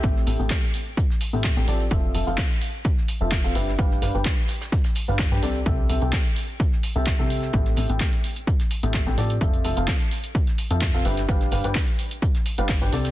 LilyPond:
<<
  \new Staff \with { instrumentName = "Upright piano" } { \time 4/4 \key a \minor \tempo 4 = 128 <a, c' a' e''>8 <a, c' g' a' e''>16 <a, c' g' a' g''>16 r4. r16 <a, c' g' a' e''>16 r16 <a, c' g' a' g''>16 <f c' g' a' d''>16 r16 | <f c' f' a' e''>8 <f c' f' a' e''>16 <f c' f' a' f''>16 r4. r16 <f c' f' a' e''>16 r16 <c' f' a' f''>16 <g d' g' b' e''>16 r16 | <g d' g' b' f''>8 <g d' g' b' f''>16 <g d' g' b' g''>16 r4. r16 <g d' g' b' f''>16 r16 <d' g' b' g''>16 <c c' g' a' d''>16 r16 | <c c' g' a' e''>8 <c c' g' a' e''>16 <c c' g' a' g''>16 r4. r16 <c c' g' a' e''>16 r16 <c c' g' a' e''>8. |
<a, c' g' a' e''>8 <a, c' g' a' e''>16 <a, c' g' a' g''>16 r4. r16 <a, c' g' a' e''>16 r16 <a, c' g' a' g''>16 <f c' g' a' d''>16 r16 | <f c' f' a' e''>8 <f c' f' a' e''>16 <f c' f' a' f''>16 r4. r16 <f c' f' a' e''>16 r16 <c' f' a' f''>16 <g d' g' b' e''>16 r16 | <g d' g' b' f''>8 <g d' g' b' f''>16 <g d' g' b' g''>16 r4. r16 <g d' g' b' f''>16 r16 <d' g' b' g''>16 <c c' g' a' d''>16 r16 | }
  \new Staff \with { instrumentName = "Analog synth bass" } { \clef bass \time 4/4 \key a \minor a,,8 a,,16 a,,16 r4. r16 a,,8 a,,16 a,,8 | r8 f,,16 f,,16 r4. r16 f,,8 f,,16 g,,8 | g,,8 g,,16 g,,16 r4. r16 g,,8 g,16 c,8 | c,8 c,16 c,16 r4. r16 c,8 c,8. |
a,,8 a,,16 a,,16 r4. r16 a,,8 a,,16 a,8 | f,,8 f,,16 f,,16 r4. r16 f,8 f,,16 g,,8 | g,,8 g,,16 g,,16 r4. r16 g,,8 g,,16 c,8 | }
  \new DrumStaff \with { instrumentName = "Drums" } \drummode { \time 4/4 <hh bd>16 sn16 <hh hho sn>16 hh16 <hc hh bd sn>8 <hh hho>8 <hh bd>16 sn16 <hh hho>8 <hc hh bd sn>16 sn16 <hh hho sn>16 hh16 | <hh bd>8 <hh hho>16 hh16 <hc hh bd sn>16 hh16 <hh hho>8 <hh bd>16 sn16 <hh hho>8 <hc hh bd sn>16 sn16 <hh hho>16 sn16 | <hh bd>16 sn16 <hh hho sn>16 hh16 <hc hh bd sn>8 <hh hho sn>16 <hh sn>16 <hh bd sn>16 <hh sn>16 <hh hho>8 <hc hh bd sn>16 sn16 <hh hho sn>16 hh16 | <hh bd>8 <hh hho>16 hh16 <hc hh bd sn>16 hh16 <hh hho>8 <hh bd>16 sn16 <hh hho>8 <hc hh bd sn>16 sn16 <hh hho>16 sn16 |
<hh bd>16 <hh sn>16 <hh hho sn>16 hh16 <hc hh bd sn>16 hh16 <hh hho>16 hh16 <hh bd>16 <hh sn>16 <hh hho>16 hh16 <hc hh bd sn>16 sn16 <hh hho sn>16 hh16 | <hh bd>16 hh16 <hh hho>16 hh16 <hc hh bd sn>16 hh16 <hh hho>16 hh16 <hh bd>16 <hh sn>16 <hh hho>16 hh16 <hc hh bd sn>16 sn16 <hh hho>16 <hh sn>16 | <hh bd>16 <hh sn>16 <hh hho sn>16 hh16 <hc hh bd sn>16 hh16 <hh hho>16 hh16 <hh bd>16 <hh sn>16 <hh hho>16 hh16 <hc hh bd sn>16 sn16 <hh hho sn>16 <hh sn>16 | }
>>